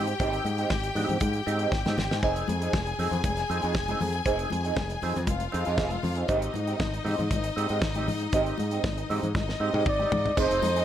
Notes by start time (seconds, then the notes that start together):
Already playing: G#2 C4 G4 G5
0.07 muted clean electric guitar stroke, closed hi-hat
0.20 G#1 C4 D#4 G4, kick, closed hi-hat
0.33 closed hi-hat
0.45 G#2, muted clean electric guitar stroke, closed hi-hat, muted conga, high conga
0.58 C4 D#4 G4, closed hi-hat
0.70 G#1, kick, snare, high conga
0.83 muted clean electric guitar stroke, closed hi-hat
0.95 G#2 C4 D#4 G4, open hi-hat, low conga
1.09 G#2, muted clean electric guitar stroke, closed hi-hat, low conga
1.20 G#2, muted clean electric guitar stroke, kick, closed hi-hat, muted conga, high conga
1.33 muted clean electric guitar stroke, closed hi-hat
1.46 G#2 C4 D#4 G4, closed hi-hat, muted conga
1.59 C4 D#4 G4, closed hi-hat
1.72 G#1, kick, snare, muted conga
1.86 G#2 C4 D#4 G4, snare, high conga
1.98 G#1, snare, muted conga, high conga, low conga
2.11 G#2, muted clean electric guitar stroke, snare
2.23 F1 C4 D#4 G#4 G#5, kick, splash
2.36 closed hi-hat
2.48 F2, closed hi-hat, muted conga, high conga
2.62 C4 D#4 G#4, closed hi-hat
2.73 F1, kick, snare, muted conga, high conga
2.87 muted clean electric guitar stroke, closed hi-hat
2.99 F2 C4 D#4 G#4, open hi-hat, muted conga, low conga
3.11 F2, muted clean electric guitar stroke, closed hi-hat, low conga
3.24 F1, muted clean electric guitar stroke, kick, closed hi-hat, muted conga, high conga
3.37 muted clean electric guitar stroke, snare, closed hi-hat
3.50 F2 C4 D#4 G#4, closed hi-hat, muted conga
3.62 F2 C4 D#4 G#4, closed hi-hat
3.75 F1, muted clean electric guitar stroke, kick, snare, muted conga
3.88 C4 D#4 G#4, closed hi-hat, high conga
4.01 F2, muted clean electric guitar stroke, open hi-hat, high conga, low conga
4.13 muted clean electric guitar stroke, closed hi-hat
4.26 F1 C4 D#4 G#4, kick, closed hi-hat
4.39 closed hi-hat
4.50 F2, muted clean electric guitar stroke, closed hi-hat, muted conga, high conga
4.65 C4 D#4 G#4, closed hi-hat
4.76 F1, kick, snare, muted conga, high conga
4.90 muted clean electric guitar stroke, closed hi-hat
5.02 F2 C4 D#4 G#4, open hi-hat, low conga
5.16 F2, muted clean electric guitar stroke, closed hi-hat, low conga
5.27 F1 F4 F5, muted clean electric guitar stroke, kick, closed hi-hat, muted conga, high conga
5.40 muted clean electric guitar stroke, closed hi-hat
5.52 F2 C4 D#4 G#4, closed hi-hat, muted conga
5.65 F2 C4 D#4 G#4, closed hi-hat
5.77 F1 C4 D#4 G#4, kick, snare, muted conga
5.90 muted clean electric guitar stroke, closed hi-hat, high conga
6.03 F2, muted clean electric guitar stroke, open hi-hat, high conga, low conga
6.15 C4 D#4 G#4, closed hi-hat
6.28 G#1 C4 D#4 G4 D#5, kick, closed hi-hat
6.42 closed hi-hat
6.54 G#2, muted clean electric guitar stroke, closed hi-hat, muted conga, high conga
6.67 C4 D#4 G4, closed hi-hat
6.79 G#1, muted clean electric guitar stroke, kick, snare, muted conga, high conga
6.93 muted clean electric guitar stroke, closed hi-hat
7.05 G#2 C4 D#4 G4, open hi-hat, muted conga, low conga
7.18 G#2, muted clean electric guitar stroke, closed hi-hat, low conga
7.31 G#1, muted clean electric guitar stroke, kick, closed hi-hat, muted conga, high conga
7.44 muted clean electric guitar stroke, closed hi-hat
7.56 G#2 C4 D#4 G4, closed hi-hat
7.69 G#2 C4 D#4 G4, closed hi-hat
7.82 G#1, muted clean electric guitar stroke, kick, snare, muted conga
7.94 C4 D#4 G4, closed hi-hat, high conga
8.07 G#2, open hi-hat, high conga, low conga
8.20 muted clean electric guitar stroke, closed hi-hat
8.33 G#1 C4 D#4 G4, kick, closed hi-hat, muted conga
8.46 closed hi-hat
8.58 G#2, muted clean electric guitar stroke, closed hi-hat, muted conga, high conga
8.71 C4 D#4 G4, closed hi-hat
8.84 G#1, muted clean electric guitar stroke, kick, snare, muted conga, high conga
8.98 muted clean electric guitar stroke, closed hi-hat
9.09 G#2 C4 D#4 G4, open hi-hat, low conga
9.23 G#2, muted clean electric guitar stroke, closed hi-hat, low conga
9.35 G#1 D#4 D#5, muted clean electric guitar stroke, kick, snare, muted conga, high conga
9.49 muted clean electric guitar stroke, snare
9.60 G#2 C4 D#4 G4
9.74 G#2 C4 D#4 G4, high tom
9.86 G#1 D5, muted clean electric guitar stroke, kick, mid tom, muted conga
9.99 C4 D#4 G4, high conga
10.12 G#2, muted clean electric guitar stroke, floor tom, muted conga, high conga, low conga
10.25 muted clean electric guitar stroke, floor tom
10.37 F1 C4 D#4 G#4 C5 D#5, kick, crash, tambourine
10.51 F1, closed hi-hat
10.62 F2, muted clean electric guitar stroke, closed hi-hat, tambourine, muted conga, high conga
10.76 C4 D#4 G#4, closed hi-hat